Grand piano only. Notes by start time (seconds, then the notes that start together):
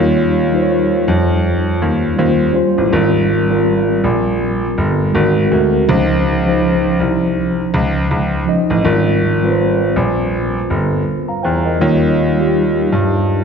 Already playing: D#2
1.08 F2
1.82 D#2
2.19 D#2
2.78 A1
2.93 G#1
4.04 A#1
4.78 G1
5.15 G#1
5.52 D2
5.89 C#2
7.00 C2
7.74 C#2
8.11 C#2
8.70 A1
8.85 G#1
9.96 A#1
10.70 G1
11.44 E2
11.81 D#2
12.92 G2